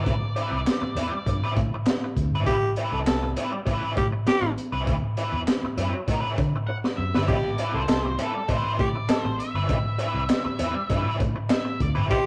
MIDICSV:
0, 0, Header, 1, 8, 480
1, 0, Start_track
1, 0, Tempo, 602410
1, 49, Time_signature, 4, 2, 24, 8
1, 9771, End_track
2, 0, Start_track
2, 0, Title_t, "Lead electric guitar"
2, 0, Program_c, 0, 29
2, 0, Note_on_c, 0, 74, 92
2, 1212, Note_off_c, 0, 74, 0
2, 5313, Note_on_c, 0, 78, 99
2, 5379, Note_off_c, 0, 78, 0
2, 5553, Note_on_c, 0, 76, 93
2, 5798, Note_on_c, 0, 74, 105
2, 5805, Note_off_c, 0, 76, 0
2, 6169, Note_off_c, 0, 74, 0
2, 6172, Note_on_c, 0, 72, 86
2, 6525, Note_on_c, 0, 69, 78
2, 6534, Note_off_c, 0, 72, 0
2, 6764, Note_on_c, 0, 72, 82
2, 6771, Note_off_c, 0, 69, 0
2, 7000, Note_off_c, 0, 72, 0
2, 7003, Note_on_c, 0, 74, 102
2, 7346, Note_off_c, 0, 74, 0
2, 7346, Note_on_c, 0, 72, 102
2, 7452, Note_off_c, 0, 72, 0
2, 7483, Note_on_c, 0, 76, 96
2, 8895, Note_off_c, 0, 76, 0
2, 9171, Note_on_c, 0, 76, 115
2, 9414, Note_off_c, 0, 76, 0
2, 9417, Note_on_c, 0, 74, 90
2, 9481, Note_off_c, 0, 74, 0
2, 9650, Note_on_c, 0, 72, 96
2, 9771, Note_off_c, 0, 72, 0
2, 9771, End_track
3, 0, Start_track
3, 0, Title_t, "Tenor saxophone"
3, 0, Program_c, 1, 66
3, 1964, Note_on_c, 1, 67, 118
3, 2156, Note_off_c, 1, 67, 0
3, 2334, Note_on_c, 1, 69, 92
3, 2422, Note_off_c, 1, 69, 0
3, 2448, Note_on_c, 1, 69, 103
3, 2638, Note_off_c, 1, 69, 0
3, 3166, Note_on_c, 1, 67, 84
3, 3241, Note_off_c, 1, 67, 0
3, 3409, Note_on_c, 1, 67, 112
3, 3598, Note_off_c, 1, 67, 0
3, 5798, Note_on_c, 1, 67, 102
3, 5992, Note_off_c, 1, 67, 0
3, 6167, Note_on_c, 1, 69, 93
3, 6258, Note_off_c, 1, 69, 0
3, 6279, Note_on_c, 1, 69, 100
3, 6472, Note_off_c, 1, 69, 0
3, 7008, Note_on_c, 1, 67, 87
3, 7083, Note_off_c, 1, 67, 0
3, 7246, Note_on_c, 1, 69, 101
3, 7437, Note_off_c, 1, 69, 0
3, 9643, Note_on_c, 1, 67, 121
3, 9771, Note_off_c, 1, 67, 0
3, 9771, End_track
4, 0, Start_track
4, 0, Title_t, "Overdriven electric guitar"
4, 0, Program_c, 2, 29
4, 0, Note_on_c, 2, 55, 56
4, 0, Note_on_c, 2, 60, 69
4, 0, Note_on_c, 2, 64, 69
4, 0, Note_on_c, 2, 71, 73
4, 97, Note_off_c, 2, 71, 0
4, 100, Note_off_c, 2, 64, 0
4, 103, Note_off_c, 2, 60, 0
4, 105, Note_off_c, 2, 55, 0
4, 286, Note_on_c, 2, 55, 82
4, 289, Note_on_c, 2, 60, 88
4, 298, Note_on_c, 2, 64, 96
4, 300, Note_on_c, 2, 71, 88
4, 458, Note_off_c, 2, 55, 0
4, 460, Note_off_c, 2, 60, 0
4, 464, Note_off_c, 2, 64, 0
4, 465, Note_off_c, 2, 71, 0
4, 769, Note_on_c, 2, 55, 77
4, 771, Note_on_c, 2, 60, 83
4, 776, Note_on_c, 2, 64, 92
4, 782, Note_on_c, 2, 71, 102
4, 895, Note_off_c, 2, 71, 0
4, 896, Note_off_c, 2, 64, 0
4, 903, Note_off_c, 2, 60, 0
4, 939, Note_off_c, 2, 55, 0
4, 1144, Note_on_c, 2, 71, 73
4, 1152, Note_on_c, 2, 64, 68
4, 1157, Note_on_c, 2, 60, 79
4, 1160, Note_on_c, 2, 55, 68
4, 1253, Note_off_c, 2, 55, 0
4, 1258, Note_off_c, 2, 60, 0
4, 1262, Note_off_c, 2, 64, 0
4, 1263, Note_off_c, 2, 71, 0
4, 1873, Note_on_c, 2, 64, 64
4, 1874, Note_on_c, 2, 71, 83
4, 1880, Note_on_c, 2, 60, 59
4, 1889, Note_on_c, 2, 55, 62
4, 2025, Note_off_c, 2, 64, 0
4, 2025, Note_off_c, 2, 71, 0
4, 2028, Note_off_c, 2, 60, 0
4, 2033, Note_off_c, 2, 55, 0
4, 2210, Note_on_c, 2, 55, 78
4, 2213, Note_on_c, 2, 60, 89
4, 2219, Note_on_c, 2, 64, 88
4, 2222, Note_on_c, 2, 71, 85
4, 2378, Note_off_c, 2, 55, 0
4, 2380, Note_off_c, 2, 60, 0
4, 2383, Note_off_c, 2, 64, 0
4, 2385, Note_off_c, 2, 71, 0
4, 2684, Note_on_c, 2, 55, 96
4, 2690, Note_on_c, 2, 60, 97
4, 2694, Note_on_c, 2, 64, 87
4, 2698, Note_on_c, 2, 71, 101
4, 2800, Note_off_c, 2, 71, 0
4, 2807, Note_off_c, 2, 64, 0
4, 2812, Note_off_c, 2, 60, 0
4, 2855, Note_off_c, 2, 55, 0
4, 2912, Note_on_c, 2, 55, 88
4, 2920, Note_on_c, 2, 60, 87
4, 2922, Note_on_c, 2, 64, 100
4, 2933, Note_on_c, 2, 71, 106
4, 3139, Note_off_c, 2, 55, 0
4, 3143, Note_off_c, 2, 60, 0
4, 3144, Note_off_c, 2, 64, 0
4, 3149, Note_off_c, 2, 71, 0
4, 3764, Note_on_c, 2, 71, 71
4, 3769, Note_on_c, 2, 64, 72
4, 3776, Note_on_c, 2, 60, 65
4, 3779, Note_on_c, 2, 55, 56
4, 3929, Note_off_c, 2, 71, 0
4, 3932, Note_off_c, 2, 64, 0
4, 3935, Note_off_c, 2, 60, 0
4, 3937, Note_off_c, 2, 55, 0
4, 4124, Note_on_c, 2, 54, 70
4, 4129, Note_on_c, 2, 60, 76
4, 4133, Note_on_c, 2, 64, 75
4, 4136, Note_on_c, 2, 71, 86
4, 4295, Note_off_c, 2, 54, 0
4, 4297, Note_off_c, 2, 60, 0
4, 4299, Note_off_c, 2, 64, 0
4, 4300, Note_off_c, 2, 71, 0
4, 4602, Note_on_c, 2, 54, 82
4, 4613, Note_on_c, 2, 60, 89
4, 4616, Note_on_c, 2, 64, 96
4, 4619, Note_on_c, 2, 71, 99
4, 4726, Note_off_c, 2, 71, 0
4, 4733, Note_off_c, 2, 64, 0
4, 4739, Note_off_c, 2, 60, 0
4, 4774, Note_off_c, 2, 54, 0
4, 4846, Note_on_c, 2, 53, 73
4, 4851, Note_on_c, 2, 59, 71
4, 4858, Note_on_c, 2, 63, 83
4, 4860, Note_on_c, 2, 70, 87
4, 4934, Note_off_c, 2, 53, 0
4, 4934, Note_on_c, 2, 54, 73
4, 4939, Note_off_c, 2, 59, 0
4, 4939, Note_on_c, 2, 60, 71
4, 4946, Note_off_c, 2, 63, 0
4, 4946, Note_on_c, 2, 64, 83
4, 4948, Note_off_c, 2, 70, 0
4, 4948, Note_on_c, 2, 71, 87
4, 5065, Note_off_c, 2, 54, 0
4, 5068, Note_off_c, 2, 60, 0
4, 5071, Note_off_c, 2, 64, 0
4, 5073, Note_off_c, 2, 71, 0
4, 5699, Note_on_c, 2, 71, 78
4, 5701, Note_on_c, 2, 64, 71
4, 5709, Note_on_c, 2, 60, 66
4, 5713, Note_on_c, 2, 54, 61
4, 5857, Note_off_c, 2, 71, 0
4, 5858, Note_off_c, 2, 64, 0
4, 5862, Note_off_c, 2, 60, 0
4, 5864, Note_off_c, 2, 54, 0
4, 6048, Note_on_c, 2, 55, 73
4, 6053, Note_on_c, 2, 60, 74
4, 6058, Note_on_c, 2, 64, 88
4, 6062, Note_on_c, 2, 71, 81
4, 6217, Note_off_c, 2, 55, 0
4, 6219, Note_off_c, 2, 60, 0
4, 6222, Note_off_c, 2, 64, 0
4, 6224, Note_off_c, 2, 71, 0
4, 6522, Note_on_c, 2, 55, 80
4, 6527, Note_on_c, 2, 60, 89
4, 6532, Note_on_c, 2, 64, 98
4, 6539, Note_on_c, 2, 71, 93
4, 6646, Note_off_c, 2, 71, 0
4, 6650, Note_off_c, 2, 64, 0
4, 6655, Note_off_c, 2, 60, 0
4, 6694, Note_off_c, 2, 55, 0
4, 6761, Note_on_c, 2, 55, 81
4, 6766, Note_on_c, 2, 60, 77
4, 6768, Note_on_c, 2, 64, 80
4, 6776, Note_on_c, 2, 71, 83
4, 6984, Note_off_c, 2, 55, 0
4, 6986, Note_off_c, 2, 60, 0
4, 6988, Note_off_c, 2, 64, 0
4, 6992, Note_off_c, 2, 71, 0
4, 7612, Note_on_c, 2, 71, 72
4, 7617, Note_on_c, 2, 64, 70
4, 7620, Note_on_c, 2, 60, 63
4, 7624, Note_on_c, 2, 55, 64
4, 7775, Note_off_c, 2, 71, 0
4, 7777, Note_off_c, 2, 64, 0
4, 7779, Note_off_c, 2, 60, 0
4, 7781, Note_off_c, 2, 55, 0
4, 7955, Note_on_c, 2, 55, 93
4, 7962, Note_on_c, 2, 60, 83
4, 7966, Note_on_c, 2, 64, 90
4, 7969, Note_on_c, 2, 71, 92
4, 8132, Note_off_c, 2, 55, 0
4, 8136, Note_off_c, 2, 60, 0
4, 8138, Note_off_c, 2, 64, 0
4, 8139, Note_off_c, 2, 71, 0
4, 8437, Note_on_c, 2, 55, 98
4, 8442, Note_on_c, 2, 60, 91
4, 8444, Note_on_c, 2, 64, 95
4, 8453, Note_on_c, 2, 71, 96
4, 8558, Note_off_c, 2, 71, 0
4, 8562, Note_off_c, 2, 64, 0
4, 8566, Note_off_c, 2, 60, 0
4, 8614, Note_off_c, 2, 55, 0
4, 8686, Note_on_c, 2, 55, 88
4, 8691, Note_on_c, 2, 60, 74
4, 8696, Note_on_c, 2, 64, 88
4, 8700, Note_on_c, 2, 71, 85
4, 8909, Note_off_c, 2, 55, 0
4, 8911, Note_off_c, 2, 60, 0
4, 8914, Note_off_c, 2, 64, 0
4, 8916, Note_off_c, 2, 71, 0
4, 9522, Note_on_c, 2, 71, 77
4, 9526, Note_on_c, 2, 64, 73
4, 9531, Note_on_c, 2, 60, 73
4, 9535, Note_on_c, 2, 55, 65
4, 9693, Note_off_c, 2, 71, 0
4, 9695, Note_off_c, 2, 64, 0
4, 9698, Note_off_c, 2, 60, 0
4, 9700, Note_off_c, 2, 55, 0
4, 9771, End_track
5, 0, Start_track
5, 0, Title_t, "Fingered electric bass"
5, 0, Program_c, 3, 33
5, 52, Note_on_c, 3, 33, 106
5, 164, Note_off_c, 3, 33, 0
5, 411, Note_on_c, 3, 36, 89
5, 514, Note_off_c, 3, 36, 0
5, 759, Note_on_c, 3, 40, 84
5, 876, Note_off_c, 3, 40, 0
5, 1005, Note_on_c, 3, 43, 93
5, 1119, Note_off_c, 3, 43, 0
5, 1248, Note_on_c, 3, 45, 103
5, 1360, Note_off_c, 3, 45, 0
5, 1726, Note_on_c, 3, 38, 99
5, 1839, Note_off_c, 3, 38, 0
5, 1846, Note_on_c, 3, 31, 91
5, 1964, Note_off_c, 3, 31, 0
5, 1964, Note_on_c, 3, 33, 106
5, 2178, Note_off_c, 3, 33, 0
5, 2328, Note_on_c, 3, 36, 83
5, 2430, Note_off_c, 3, 36, 0
5, 2435, Note_on_c, 3, 36, 96
5, 2653, Note_off_c, 3, 36, 0
5, 2921, Note_on_c, 3, 33, 101
5, 3035, Note_off_c, 3, 33, 0
5, 3164, Note_on_c, 3, 45, 106
5, 3277, Note_off_c, 3, 45, 0
5, 3520, Note_on_c, 3, 33, 85
5, 3625, Note_off_c, 3, 33, 0
5, 3763, Note_on_c, 3, 36, 95
5, 3883, Note_off_c, 3, 36, 0
5, 3883, Note_on_c, 3, 38, 107
5, 3996, Note_off_c, 3, 38, 0
5, 4243, Note_on_c, 3, 40, 90
5, 4347, Note_off_c, 3, 40, 0
5, 4601, Note_on_c, 3, 42, 88
5, 4715, Note_off_c, 3, 42, 0
5, 4841, Note_on_c, 3, 45, 84
5, 4955, Note_off_c, 3, 45, 0
5, 5084, Note_on_c, 3, 50, 100
5, 5196, Note_off_c, 3, 50, 0
5, 5563, Note_on_c, 3, 42, 99
5, 5676, Note_off_c, 3, 42, 0
5, 5696, Note_on_c, 3, 31, 85
5, 5794, Note_off_c, 3, 31, 0
5, 5804, Note_on_c, 3, 33, 94
5, 6018, Note_off_c, 3, 33, 0
5, 6169, Note_on_c, 3, 36, 88
5, 6270, Note_off_c, 3, 36, 0
5, 6282, Note_on_c, 3, 36, 89
5, 6497, Note_off_c, 3, 36, 0
5, 6764, Note_on_c, 3, 33, 94
5, 6877, Note_off_c, 3, 33, 0
5, 7005, Note_on_c, 3, 45, 97
5, 7118, Note_off_c, 3, 45, 0
5, 7369, Note_on_c, 3, 33, 91
5, 7471, Note_off_c, 3, 33, 0
5, 7604, Note_on_c, 3, 31, 85
5, 7708, Note_off_c, 3, 31, 0
5, 7724, Note_on_c, 3, 33, 105
5, 7838, Note_off_c, 3, 33, 0
5, 8083, Note_on_c, 3, 36, 78
5, 8188, Note_off_c, 3, 36, 0
5, 8442, Note_on_c, 3, 40, 88
5, 8558, Note_off_c, 3, 40, 0
5, 8681, Note_on_c, 3, 43, 106
5, 8798, Note_off_c, 3, 43, 0
5, 8925, Note_on_c, 3, 45, 103
5, 9040, Note_off_c, 3, 45, 0
5, 9406, Note_on_c, 3, 38, 93
5, 9522, Note_off_c, 3, 38, 0
5, 9530, Note_on_c, 3, 31, 78
5, 9646, Note_off_c, 3, 31, 0
5, 9646, Note_on_c, 3, 33, 105
5, 9771, Note_off_c, 3, 33, 0
5, 9771, End_track
6, 0, Start_track
6, 0, Title_t, "Muted fingered electric bass strokes"
6, 652, Note_on_c, 9, 29, 44
6, 732, Note_off_c, 9, 29, 0
6, 3399, Note_on_c, 9, 29, 42
6, 3479, Note_off_c, 9, 29, 0
6, 4487, Note_on_c, 9, 29, 42
6, 4567, Note_off_c, 9, 29, 0
6, 7242, Note_on_c, 9, 29, 38
6, 7322, Note_off_c, 9, 29, 0
6, 8328, Note_on_c, 9, 29, 44
6, 8407, Note_off_c, 9, 29, 0
6, 9771, End_track
7, 0, Start_track
7, 0, Title_t, "Muted overdriven electric guitar strokes"
7, 651, Note_on_c, 9, 29, 49
7, 730, Note_off_c, 9, 29, 0
7, 905, Note_on_c, 9, 29, 43
7, 984, Note_off_c, 9, 29, 0
7, 1019, Note_on_c, 9, 29, 41
7, 1099, Note_off_c, 9, 29, 0
7, 1263, Note_on_c, 9, 29, 53
7, 1342, Note_off_c, 9, 29, 0
7, 1388, Note_on_c, 9, 29, 49
7, 1468, Note_off_c, 9, 29, 0
7, 1507, Note_on_c, 9, 29, 34
7, 1587, Note_off_c, 9, 29, 0
7, 1627, Note_on_c, 9, 29, 54
7, 1706, Note_off_c, 9, 29, 0
7, 2573, Note_on_c, 9, 29, 41
7, 2653, Note_off_c, 9, 29, 0
7, 2809, Note_on_c, 9, 29, 47
7, 2889, Note_off_c, 9, 29, 0
7, 3158, Note_on_c, 9, 29, 40
7, 3238, Note_off_c, 9, 29, 0
7, 3286, Note_on_c, 9, 29, 39
7, 3366, Note_off_c, 9, 29, 0
7, 3399, Note_on_c, 9, 29, 44
7, 3479, Note_off_c, 9, 29, 0
7, 3528, Note_on_c, 9, 29, 47
7, 3608, Note_off_c, 9, 29, 0
7, 4500, Note_on_c, 9, 29, 50
7, 4580, Note_off_c, 9, 29, 0
7, 4736, Note_on_c, 9, 29, 38
7, 4816, Note_off_c, 9, 29, 0
7, 5093, Note_on_c, 9, 29, 41
7, 5173, Note_off_c, 9, 29, 0
7, 5225, Note_on_c, 9, 29, 47
7, 5304, Note_off_c, 9, 29, 0
7, 5327, Note_on_c, 9, 29, 31
7, 5407, Note_off_c, 9, 29, 0
7, 5457, Note_on_c, 9, 29, 47
7, 5537, Note_off_c, 9, 29, 0
7, 6412, Note_on_c, 9, 29, 37
7, 6492, Note_off_c, 9, 29, 0
7, 6655, Note_on_c, 9, 29, 36
7, 6735, Note_off_c, 9, 29, 0
7, 7003, Note_on_c, 9, 29, 41
7, 7083, Note_off_c, 9, 29, 0
7, 7135, Note_on_c, 9, 29, 44
7, 7215, Note_off_c, 9, 29, 0
7, 7242, Note_on_c, 9, 29, 44
7, 7322, Note_off_c, 9, 29, 0
7, 7369, Note_on_c, 9, 29, 46
7, 7449, Note_off_c, 9, 29, 0
7, 8325, Note_on_c, 9, 29, 47
7, 8404, Note_off_c, 9, 29, 0
7, 8568, Note_on_c, 9, 29, 47
7, 8647, Note_off_c, 9, 29, 0
7, 8922, Note_on_c, 9, 29, 51
7, 9001, Note_off_c, 9, 29, 0
7, 9049, Note_on_c, 9, 29, 45
7, 9129, Note_off_c, 9, 29, 0
7, 9156, Note_on_c, 9, 29, 40
7, 9236, Note_off_c, 9, 29, 0
7, 9282, Note_on_c, 9, 29, 41
7, 9362, Note_off_c, 9, 29, 0
7, 9771, End_track
8, 0, Start_track
8, 0, Title_t, "Drums"
8, 51, Note_on_c, 9, 36, 107
8, 52, Note_on_c, 9, 42, 81
8, 131, Note_off_c, 9, 36, 0
8, 132, Note_off_c, 9, 42, 0
8, 289, Note_on_c, 9, 42, 58
8, 369, Note_off_c, 9, 42, 0
8, 529, Note_on_c, 9, 42, 92
8, 536, Note_on_c, 9, 38, 115
8, 536, Note_on_c, 9, 39, 105
8, 609, Note_off_c, 9, 42, 0
8, 615, Note_off_c, 9, 38, 0
8, 615, Note_off_c, 9, 39, 0
8, 769, Note_on_c, 9, 42, 91
8, 849, Note_off_c, 9, 42, 0
8, 1008, Note_on_c, 9, 36, 78
8, 1010, Note_on_c, 9, 42, 84
8, 1088, Note_off_c, 9, 36, 0
8, 1090, Note_off_c, 9, 42, 0
8, 1247, Note_on_c, 9, 42, 77
8, 1249, Note_on_c, 9, 36, 105
8, 1326, Note_off_c, 9, 42, 0
8, 1328, Note_off_c, 9, 36, 0
8, 1481, Note_on_c, 9, 42, 83
8, 1487, Note_on_c, 9, 38, 122
8, 1487, Note_on_c, 9, 39, 97
8, 1561, Note_off_c, 9, 42, 0
8, 1566, Note_off_c, 9, 38, 0
8, 1566, Note_off_c, 9, 39, 0
8, 1726, Note_on_c, 9, 36, 83
8, 1728, Note_on_c, 9, 42, 66
8, 1805, Note_off_c, 9, 36, 0
8, 1807, Note_off_c, 9, 42, 0
8, 1964, Note_on_c, 9, 36, 101
8, 1964, Note_on_c, 9, 42, 72
8, 2043, Note_off_c, 9, 42, 0
8, 2044, Note_off_c, 9, 36, 0
8, 2201, Note_on_c, 9, 42, 61
8, 2280, Note_off_c, 9, 42, 0
8, 2441, Note_on_c, 9, 42, 96
8, 2447, Note_on_c, 9, 38, 111
8, 2447, Note_on_c, 9, 39, 95
8, 2520, Note_off_c, 9, 42, 0
8, 2527, Note_off_c, 9, 38, 0
8, 2527, Note_off_c, 9, 39, 0
8, 2682, Note_on_c, 9, 42, 88
8, 2761, Note_off_c, 9, 42, 0
8, 2921, Note_on_c, 9, 36, 73
8, 2922, Note_on_c, 9, 42, 79
8, 3001, Note_off_c, 9, 36, 0
8, 3002, Note_off_c, 9, 42, 0
8, 3161, Note_on_c, 9, 42, 67
8, 3163, Note_on_c, 9, 36, 98
8, 3241, Note_off_c, 9, 42, 0
8, 3243, Note_off_c, 9, 36, 0
8, 3401, Note_on_c, 9, 42, 92
8, 3407, Note_on_c, 9, 38, 123
8, 3407, Note_on_c, 9, 39, 87
8, 3481, Note_off_c, 9, 42, 0
8, 3486, Note_off_c, 9, 38, 0
8, 3486, Note_off_c, 9, 39, 0
8, 3648, Note_on_c, 9, 42, 57
8, 3727, Note_off_c, 9, 42, 0
8, 3882, Note_on_c, 9, 36, 117
8, 3882, Note_on_c, 9, 42, 84
8, 3962, Note_off_c, 9, 36, 0
8, 3962, Note_off_c, 9, 42, 0
8, 4120, Note_on_c, 9, 42, 70
8, 4199, Note_off_c, 9, 42, 0
8, 4360, Note_on_c, 9, 42, 98
8, 4366, Note_on_c, 9, 38, 124
8, 4366, Note_on_c, 9, 39, 94
8, 4439, Note_off_c, 9, 42, 0
8, 4446, Note_off_c, 9, 38, 0
8, 4446, Note_off_c, 9, 39, 0
8, 4602, Note_on_c, 9, 42, 87
8, 4682, Note_off_c, 9, 42, 0
8, 4843, Note_on_c, 9, 36, 82
8, 4844, Note_on_c, 9, 42, 83
8, 4922, Note_off_c, 9, 36, 0
8, 4924, Note_off_c, 9, 42, 0
8, 5082, Note_on_c, 9, 42, 74
8, 5085, Note_on_c, 9, 36, 101
8, 5162, Note_off_c, 9, 42, 0
8, 5164, Note_off_c, 9, 36, 0
8, 5452, Note_on_c, 9, 38, 59
8, 5532, Note_off_c, 9, 38, 0
8, 5693, Note_on_c, 9, 38, 95
8, 5773, Note_off_c, 9, 38, 0
8, 5803, Note_on_c, 9, 49, 71
8, 5805, Note_on_c, 9, 36, 113
8, 5811, Note_on_c, 9, 56, 80
8, 5883, Note_off_c, 9, 49, 0
8, 5885, Note_off_c, 9, 36, 0
8, 5891, Note_off_c, 9, 56, 0
8, 6041, Note_on_c, 9, 42, 64
8, 6121, Note_off_c, 9, 42, 0
8, 6279, Note_on_c, 9, 56, 77
8, 6282, Note_on_c, 9, 42, 94
8, 6289, Note_on_c, 9, 38, 111
8, 6289, Note_on_c, 9, 39, 103
8, 6359, Note_off_c, 9, 56, 0
8, 6362, Note_off_c, 9, 42, 0
8, 6368, Note_off_c, 9, 38, 0
8, 6368, Note_off_c, 9, 39, 0
8, 6522, Note_on_c, 9, 42, 92
8, 6602, Note_off_c, 9, 42, 0
8, 6760, Note_on_c, 9, 56, 68
8, 6764, Note_on_c, 9, 36, 86
8, 6765, Note_on_c, 9, 42, 80
8, 6840, Note_off_c, 9, 56, 0
8, 6844, Note_off_c, 9, 36, 0
8, 6844, Note_off_c, 9, 42, 0
8, 7006, Note_on_c, 9, 36, 103
8, 7007, Note_on_c, 9, 42, 72
8, 7086, Note_off_c, 9, 36, 0
8, 7086, Note_off_c, 9, 42, 0
8, 7242, Note_on_c, 9, 42, 94
8, 7242, Note_on_c, 9, 56, 93
8, 7247, Note_on_c, 9, 38, 125
8, 7247, Note_on_c, 9, 39, 97
8, 7321, Note_off_c, 9, 56, 0
8, 7322, Note_off_c, 9, 42, 0
8, 7327, Note_off_c, 9, 38, 0
8, 7327, Note_off_c, 9, 39, 0
8, 7488, Note_on_c, 9, 42, 66
8, 7568, Note_off_c, 9, 42, 0
8, 7721, Note_on_c, 9, 42, 78
8, 7723, Note_on_c, 9, 36, 117
8, 7729, Note_on_c, 9, 56, 71
8, 7800, Note_off_c, 9, 42, 0
8, 7803, Note_off_c, 9, 36, 0
8, 7809, Note_off_c, 9, 56, 0
8, 7960, Note_on_c, 9, 42, 68
8, 8040, Note_off_c, 9, 42, 0
8, 8199, Note_on_c, 9, 42, 96
8, 8199, Note_on_c, 9, 56, 73
8, 8205, Note_on_c, 9, 38, 126
8, 8205, Note_on_c, 9, 39, 104
8, 8278, Note_off_c, 9, 42, 0
8, 8279, Note_off_c, 9, 56, 0
8, 8285, Note_off_c, 9, 38, 0
8, 8285, Note_off_c, 9, 39, 0
8, 8439, Note_on_c, 9, 42, 97
8, 8519, Note_off_c, 9, 42, 0
8, 8682, Note_on_c, 9, 56, 63
8, 8683, Note_on_c, 9, 36, 79
8, 8683, Note_on_c, 9, 42, 78
8, 8762, Note_off_c, 9, 56, 0
8, 8763, Note_off_c, 9, 36, 0
8, 8763, Note_off_c, 9, 42, 0
8, 8926, Note_on_c, 9, 36, 97
8, 8926, Note_on_c, 9, 42, 74
8, 9005, Note_off_c, 9, 42, 0
8, 9006, Note_off_c, 9, 36, 0
8, 9159, Note_on_c, 9, 42, 98
8, 9164, Note_on_c, 9, 38, 125
8, 9164, Note_on_c, 9, 39, 93
8, 9167, Note_on_c, 9, 56, 96
8, 9239, Note_off_c, 9, 42, 0
8, 9244, Note_off_c, 9, 38, 0
8, 9244, Note_off_c, 9, 39, 0
8, 9246, Note_off_c, 9, 56, 0
8, 9406, Note_on_c, 9, 36, 89
8, 9407, Note_on_c, 9, 42, 61
8, 9486, Note_off_c, 9, 36, 0
8, 9487, Note_off_c, 9, 42, 0
8, 9647, Note_on_c, 9, 36, 114
8, 9647, Note_on_c, 9, 42, 74
8, 9651, Note_on_c, 9, 56, 78
8, 9727, Note_off_c, 9, 36, 0
8, 9727, Note_off_c, 9, 42, 0
8, 9731, Note_off_c, 9, 56, 0
8, 9771, End_track
0, 0, End_of_file